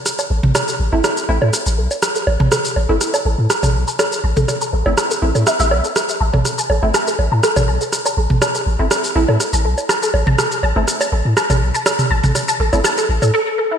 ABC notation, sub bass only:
X:1
M:4/4
L:1/16
Q:1/4=122
K:Am
V:1 name="Sub bass" clef=bass
z2 A,,, A,,, z2 A,,, G,,, z2 A,,, A,, z A,,, B,,, z | z2 A,,, A,,, z2 A,,, G,,, z2 A,,, A,, z A,,, B,,, z | z2 A,,, A,,, z2 A,,, G,,, z2 A,,, A,, z A,,, B,,, z | z2 A,,, A,,, z2 A,,, G,,, z2 A,,, A,, z A,,, B,,, z |
z2 A,,, A,,, z2 A,,, G,,, z2 A,,, A,, z A,,, B,,, z | z2 A,,, A,,, z2 A,,, G,,, z2 A,,, A,, z A,,, B,,, z | z2 A,,, A,,, z2 A,,, G,,, z2 A,,, A,, z4 |]